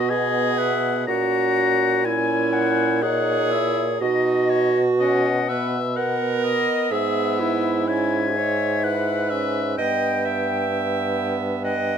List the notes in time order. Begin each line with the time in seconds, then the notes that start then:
Already playing: B2 B3 F#4 D#5
0.08 G#4 D#5 G#5
0.58 E5 F#5
1.07 A#2 C#4 F#4 F#5 A#5
2.05 C#4 E4 G#5
2.53 F#5
3.02 D#4 G#4 C#5 F#5
3.52 E4 E5
4.00 B2 D#4 F#4 D#5
4.49 C#5 D#5
4.99 C#4 D#5 F#5
5.49 B3 B4 E5
5.96 A#4 F#5
6.44 D#5
6.91 G#2 B3 G#4 E5
7.40 E4
7.87 C#4 E5 G#5
8.36 D#4 C#5
8.83 E4 B4 F#5
9.30 C#4 E5
9.78 G2 B3 D#5 G5
10.25 E5
10.71 B3
11.64 D#5 F#5 G5